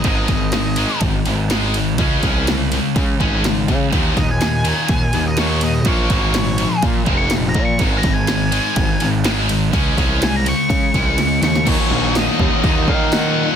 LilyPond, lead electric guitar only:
\new Staff \with { instrumentName = "Lead electric guitar" } { \time 4/4 \key ees \minor \tempo 4 = 124 ees''2 r2 | r1 | r8 ees''16 aes''2 ees''16 des''8 ees''8 | des''2 \tuplet 3/2 { r4 des'''8 r8 bes''8 des'''8 } |
\tuplet 3/2 { r8 bes''8 aes''8~ } aes''4.~ aes''16 r4 r16 | r4 aes''16 bes''16 des'''2 des'''8 | des''4 ees''4 ees''8 f''8 ges''4 | }